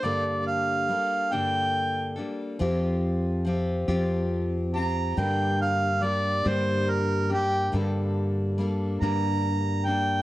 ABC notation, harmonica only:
X:1
M:6/8
L:1/8
Q:3/8=47
K:Gm
V:1 name="Harmonica"
d f2 g2 z | z4 z b | g f d c B G | z3 b2 g |]